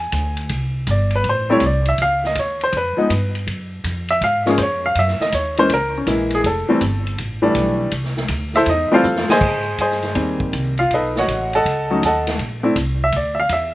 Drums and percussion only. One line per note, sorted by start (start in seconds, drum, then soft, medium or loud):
0.12 kick soft
0.12 hi-hat pedal medium
0.12 ride medium
0.37 ride soft
0.49 kick soft
0.49 ride medium
0.87 kick soft
0.87 hi-hat pedal medium
0.87 ride medium
1.11 ride soft
1.24 kick soft
1.24 ride medium
1.60 kick soft
1.60 hi-hat pedal soft
1.60 ride medium
1.85 ride soft
1.98 kick soft
1.98 ride medium
2.24 snare soft
2.35 kick soft
2.35 hi-hat pedal soft
2.35 ride medium
2.61 ride soft
2.72 kick soft
2.72 ride medium
3.10 kick soft
3.10 hi-hat pedal medium
3.10 ride medium
3.35 ride soft
3.47 kick soft
3.47 ride medium
3.84 kick soft
3.84 hi-hat pedal medium
3.84 ride medium
4.08 ride soft
4.21 kick soft
4.21 ride medium
4.46 snare soft
4.58 kick soft
4.58 hi-hat pedal medium
4.58 ride medium
4.95 kick soft
4.95 ride medium
5.08 snare soft
5.21 snare soft
5.32 kick soft
5.32 hi-hat pedal medium
5.32 ride medium
5.57 ride soft
5.70 kick soft
5.70 ride medium
6.07 kick soft
6.07 hi-hat pedal medium
6.07 ride medium
6.30 ride soft
6.44 kick soft
6.44 ride medium
6.81 kick soft
6.81 hi-hat pedal medium
6.81 ride medium
7.07 ride soft
7.18 kick soft
7.18 ride medium
7.55 kick soft
7.55 hi-hat pedal medium
7.55 ride medium
7.91 kick soft
7.91 ride medium
8.04 snare soft
8.17 snare medium
8.28 kick soft
8.28 hi-hat pedal medium
8.28 ride medium
8.54 snare soft
8.66 kick soft
8.66 ride medium
9.04 hi-hat pedal medium
9.16 snare medium
9.29 snare medium
9.41 kick medium
9.41 crash medium
9.78 kick soft
9.78 hi-hat pedal soft
9.78 ride medium
9.90 snare soft
10.03 snare soft
10.03 ride soft
10.15 kick soft
10.15 ride medium
10.40 kick soft
10.53 kick soft
10.53 hi-hat pedal medium
10.53 ride medium
10.78 ride soft
10.91 kick soft
10.91 ride medium
11.16 snare medium
11.28 kick soft
11.28 hi-hat pedal medium
11.28 ride medium
11.53 ride soft
11.65 kick soft
11.65 ride medium
12.02 kick soft
12.02 hi-hat pedal medium
12.02 ride medium
12.27 snare medium
12.27 ride medium
12.39 kick soft
12.39 ride medium
12.76 kick soft
12.76 hi-hat pedal medium
12.76 ride medium
13.12 kick soft
13.12 ride medium
13.49 kick soft
13.49 hi-hat pedal medium
13.49 ride medium